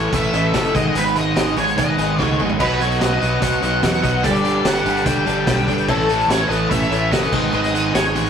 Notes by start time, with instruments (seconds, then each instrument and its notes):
Already playing: fingered electric bass A1, distorted electric guitar A2 E3 A3 C#4 A4, tonewheel organ C#4 E4 A4 C#5, lead electric guitar C#5
0.12 fingered electric bass A1, distorted electric guitar A2 E3 A3 C#4 A4, lead electric guitar E5, kick, closed hi-hat
0.32 fingered electric bass A1, distorted electric guitar A2 E3 A3 C#4 A4, honky-tonk piano C#4 E4 A4 D#5, closed hi-hat
0.53 fingered electric bass F#1, distorted electric guitar A2 E3 A3 C#4 A4, lead electric guitar E5, kick, snare, closed hi-hat
0.64 closed hi-hat
0.74 fingered electric bass G#1, distorted electric guitar G#2 D#3 G#3 B3 D#4 G#4, honky-tonk piano D#4 G#4 B4 D#5, tonewheel organ D#4 G#4 B4 D#5, lead electric guitar D#5, kick, closed hi-hat
0.94 fingered electric bass G#1, distorted electric guitar G#2 D#3 G#3 B3 D#4 G#4, lead electric guitar B4, closed hi-hat
1.06 closed hi-hat
1.15 distorted electric guitar G#2 D#3 G#3 B3 D#4 G#4, lead electric guitar D#5, closed hi-hat
1.35 fingered electric bass G#1, distorted electric guitar G#2 D#3 G#3 B3 D#4 G#4, lead electric guitar D#5, snare, closed hi-hat
1.56 fingered electric bass G#1, distorted electric guitar G#2 D#3 G#3 B3 D#4 G#4, lead electric guitar C#5, closed hi-hat
1.67 closed hi-hat
1.77 fingered electric bass G#1, distorted electric guitar G#2 D#3 G#3 B3 D#4 G#4, lead electric guitar B4 D#5, kick, closed hi-hat
1.98 fingered electric bass G#1, distorted electric guitar G#2 D#3 G#3 B3 D#4 G#4, honky-tonk piano D#4 G#4 B4 D#5, closed hi-hat
2.18 fingered electric bass C#2, distorted electric guitar G#2 D#3 G#3 B3 D#4 G#4, kick, snare
2.22 lead electric guitar A4 C#5
2.29 high tom
2.38 fingered electric bass G#1, distorted electric guitar G#2 D#3 G#3 B3 D#4 G#4, honky-tonk piano D#4 G#4 B4 D#5, mid tom
2.49 floor tom
2.57 fingered electric bass B1, distorted electric guitar B2 F#3 B3 D#4 F#4, honky-tonk piano D#4 F#4 B4 D#5, tonewheel organ D#4 F#4 B4 D#5, lead electric guitar B4, kick, crash, splash
2.62 lead electric guitar F#4
2.70 snare
2.78 distorted electric guitar B2 F#3 B3 D#4 F#4, lead electric guitar C#5, closed hi-hat
2.82 lead electric guitar A4
2.91 closed hi-hat
2.99 fingered electric bass B1, distorted electric guitar B2 F#3 B3 D#4 F#4, lead electric guitar D#5, snare, closed hi-hat
3.04 lead electric guitar B4
3.20 fingered electric bass B1, distorted electric guitar B2 F#3 B3 D#4 F#4, closed hi-hat
3.42 fingered electric bass B1, distorted electric guitar B2 F#3 B3 D#4 F#4, lead electric guitar D#5 F#5, kick, closed hi-hat
3.62 fingered electric bass B1, distorted electric guitar B2 F#3 B3 D#4 F#4, honky-tonk piano D#4 F#4 B4 D#5, closed hi-hat
3.83 fingered electric bass E2, distorted electric guitar B2 F#3 B3 D#4 F#4, lead electric guitar D#5 F#5, kick, snare, closed hi-hat
3.93 closed hi-hat
4.01 fingered electric bass B1, distorted electric guitar B2 F#3 B3 D#4 F#4, honky-tonk piano D#4 F#4 B4 D#5, kick, closed hi-hat
4.22 fingered electric bass G1, overdriven electric guitar G2 D3, distorted electric guitar G3 A3 D4, honky-tonk piano D4 G4 A4 D5, tonewheel organ D4 G4 A4 D5, lead electric guitar A4 D5, kick, closed hi-hat
4.26 distorted electric guitar G4
4.35 snare, closed hi-hat
4.43 overdriven electric guitar G2 D3, distorted electric guitar G3 A3 D4 G4, closed hi-hat
4.64 fingered electric bass G1, overdriven electric guitar G2 D3, distorted electric guitar G3 A3 D4 G4, lead electric guitar D5 F#5, snare, closed hi-hat
4.85 fingered electric bass G1, overdriven electric guitar G2 D3, distorted electric guitar G3 A3 D4 G4, snare, closed hi-hat
4.96 closed hi-hat
5.04 fingered electric bass G1, overdriven electric guitar G2 D3, distorted electric guitar G3 A3 D4 G4, lead electric guitar D5 G5, kick, closed hi-hat
5.26 fingered electric bass G1, overdriven electric guitar G2 D3, distorted electric guitar G3 A3 D4 G4, honky-tonk piano D4 G4 A4 D5, closed hi-hat
5.46 fingered electric bass B1, overdriven electric guitar G2 D3, distorted electric guitar G3 A3 D4 G4, lead electric guitar D5 G5, kick, snare, closed hi-hat
5.58 closed hi-hat
5.67 fingered electric bass G1, overdriven electric guitar G2 D3, distorted electric guitar G3 A3 D4 G4, honky-tonk piano D4 G4 A4 B4, kick, closed hi-hat
5.72 twelve-string acoustic guitar A3
5.78 closed hi-hat
5.87 fingered electric bass A1, distorted electric guitar A2 E3 A3 C#4 A4, honky-tonk piano C#4 E4 A4 C#5, tonewheel organ C#4 E4 A4 C#5, lead electric guitar E4 A4, kick, crash
5.99 snare
6.09 distorted electric guitar A2 E3 A3 C#4 A4, closed hi-hat
6.20 closed hi-hat
6.28 fingered electric bass A1, distorted electric guitar A2 E3 A3 C#4 A4, lead electric guitar A4 C#5, snare, closed hi-hat
6.48 fingered electric bass A1, distorted electric guitar A2 E3 A3 C#4, lead electric guitar B4 D#5, closed hi-hat
6.52 distorted electric guitar A4
6.70 fingered electric bass A1, distorted electric guitar A2 E3 A3 C#4 A4, lead electric guitar C#5 E5, kick, closed hi-hat
6.82 closed hi-hat
6.90 fingered electric bass A1, distorted electric guitar A2 E3 A3 C#4 A4, honky-tonk piano C#4 E4 A4 C#5, closed hi-hat
7.11 fingered electric bass F#1, distorted electric guitar A2 E3 A3 C#4 A4, lead electric guitar B4 D#5, kick, snare, closed hi-hat
7.23 closed hi-hat
7.32 fingered electric bass G#1, distorted electric guitar G#2 D#3 G#3 B3 D#4 G#4, honky-tonk piano B3 D#4 G#4 B4, tonewheel organ B3 D#4 G#4 B4, kick, crash
7.52 fingered electric bass G#1, distorted electric guitar G#2 D#3 G#3 B3 D#4 G#4, lead electric guitar B4 D#5
7.64 snare, closed hi-hat
7.73 distorted electric guitar G#2 D#3 G#3 B3 D#4 G#4, closed hi-hat
7.93 fingered electric bass G#1, distorted electric guitar G#2 D#3 G#3 B3 D#4 G#4, lead electric guitar G#4 C#5, snare, closed hi-hat
8.05 closed hi-hat
8.13 fingered electric bass A1, distorted electric guitar G#2 D#3 G#3 B3 D#4, twelve-string acoustic guitar G#4, snare, closed hi-hat
8.18 distorted electric guitar G#4
8.26 closed hi-hat